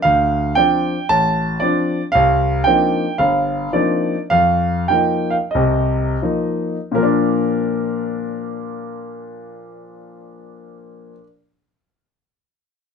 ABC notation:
X:1
M:4/4
L:1/16
Q:"Swing" 1/4=91
K:Bb
V:1 name="Grand piano"
f4 g4 a4 d3 z | f4 g4 f4 d3 z | f4 g2 f2 e6 z2 | [B,,F,B,DB]16- |
[B,,F,B,DB]16 |]
V:2 name="Grand piano"
D,,4 [F,CD]2 z2 A,,,4 [F,CD]2 z2 | C,,4 [F,B,CDE]2 z2 G,,,4 [F,B,CDE]2 z2 | F,,4 [F,B,E]2 z2 [C,,C,]4 [F,B,E]2 z2 | z16 |
z16 |]